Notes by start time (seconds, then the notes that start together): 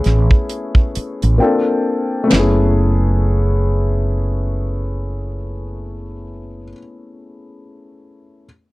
Already playing: A3 B3 C#4 E4 G#4
0.04 A1, snare, closed hi-hat
0.31 kick
0.49 closed hi-hat
0.75 kick
0.95 muted fretless electric bass stroke, closed hi-hat
1.22 A1, closed hi-hat
1.38 A#3 C4 D4 F4 A4 G5
2.24 A3 B3
2.30 F#1 C#4, snare, splash
2.35 E4 G#4